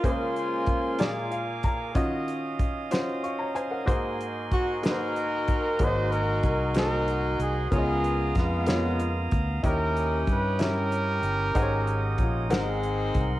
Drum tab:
HH |xxxxxx|xxxxxx|xxxxxx|xxxxxx|
SD |---o--|---o--|---o--|---o--|
BD |o-o--o|o-o---|o-o--o|o-o---|

HH |xxxxxx|xxxxxx|xxxxxx|
SD |--oo--|---o--|---o--|
BD |o-o--o|o-o---|o-o--o|